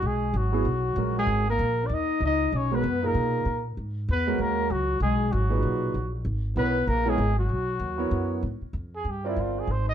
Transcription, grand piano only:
0.52 F#3 B3 E4 G#4
0.96 G#3 C#4 F#4 A#4
2.71 G#3 C#4 F#4 A#4
3.02 A#2 D#4 G#4 A#4
4.27 G#3 C#4 F#4 A#4
5.49 A#2 D#4 G#4 B4
6.57 B3 E4 A#4 C#5
7.06 B3 E4 A#4 C#5
7.98 B3 E4 A#4 C#5
9.24 C4 F4 A#4 D5

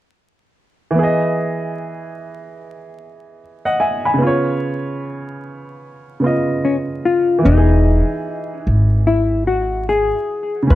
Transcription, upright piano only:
0.91 E3
0.95 B3
0.99 G#4
1.03 D#5
3.65 D#5 F#5
3.80 E5 G#5
4.05 G#5 B5
4.14 C#3
4.18 B3
4.22 F4
4.27 C#5
6.20 C#3 B3
6.24 F4 D#5
7.39 E3
7.43 B3
7.47 D#5
7.51 G4
7.58 G#4
10.62 C#3
10.67 C#4 F4

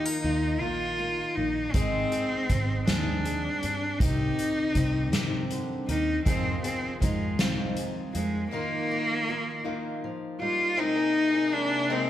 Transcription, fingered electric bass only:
0.24 D#2
0.62 A#1
1.37 A#1
1.75 G#1
2.49 G#1
2.88 D#2
3.64 G2
4.00 C2
4.75 C2
5.14 G2
5.88 D#2
6.26 F2
7.02 F2
7.39 C2
8.15 F2

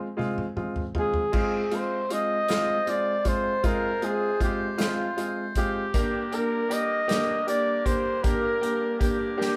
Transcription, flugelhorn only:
Already playing: C5
0.99 G#4
1.76 C5
2.13 D#5
2.89 D5
3.28 C5
3.67 A#4
4.05 G#4
4.44 G4
4.81 F4
5.58 G4
6.34 A#4
6.73 D#5
7.49 D5
7.86 C5
8.23 A#4
9.02 G4
9.42 G4

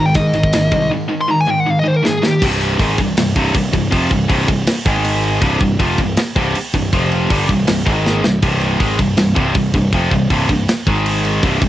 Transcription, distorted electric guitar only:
Already playing: G#2 D#3
0.15 G#2 D#3
0.34 G#2 D#3
0.54 G#2 D#3
0.71 G#2 D#3
0.91 G#2 D#3
1.08 G#2 D#3
1.28 G#2 D#3
1.47 G#2 D#3
1.66 G#2 D#3
1.84 G#2 D#3
2.04 G#2 D#3
2.23 G#2 D#3
2.42 C2 G2 C3
2.80 G#2 D#3 G#3
2.99 C2 G2
3.18 C2 G2
3.37 C2 G2 C3
3.55 C2 G2
3.73 C2 G2
3.91 F2 C3 F3
4.10 C2 G2
4.28 C2 G2 C3
4.49 C2 G2
4.86 G#2 D#3 G#3
5.42 C2 G2 C3
5.61 C2 G2
5.79 F2 C3 F3
5.99 C2 G2
6.18 muted distorted electric guitar stroke
6.36 C2 G2 C3
6.55 muted distorted electric guitar stroke
6.74 C2 G2
6.93 F2 C3 F3
7.31 G2 D3 G3
7.49 C2 G2
7.67 C2 G2
7.86 G#2 D#3 G#3
8.24 C2 G2
8.43 C2 G2 C3
8.79 G#2 D#3 G#3
8.99 C2 G2
9.17 C2 G2
9.35 C2 G2 C3
9.56 C2 G2
9.75 C2 G2
9.94 F2 C3 F3
10.13 C2 G2
10.30 C2 G2 C3
10.49 C2 G2
10.87 G#2 D#3 G#3
11.43 C2 G2 C3
11.62 C2 G2

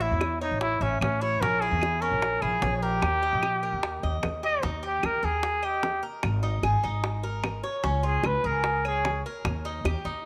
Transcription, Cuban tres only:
0.00 E5
0.41 C#5
0.81 E5
1.21 E4
1.42 C#4
1.62 E4
2.02 C#4
2.42 E4
2.62 C#5
2.82 A#4
3.23 D#5
3.63 A#4
4.03 D#5
4.43 G4
4.63 D#4
4.83 G4
5.23 A#4
5.63 D#5
6.03 A#4
6.43 D#4
6.63 G#4
6.84 D#4
7.23 A#4
7.63 C#5
7.83 C#4
8.03 F4
8.44 G#4
8.85 C#5
9.26 A#4
9.65 D#4
9.86 G4
10.05 D#4

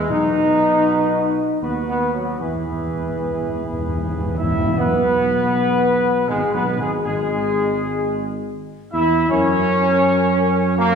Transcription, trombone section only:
0.10 D#4
1.62 B3
1.89 B3
2.14 F#3
2.41 E3
4.38 E4
4.77 B3
6.29 G#3
6.54 B3
6.79 G#3
7.05 G#3
8.93 E4
9.30 C#4
10.79 A#3

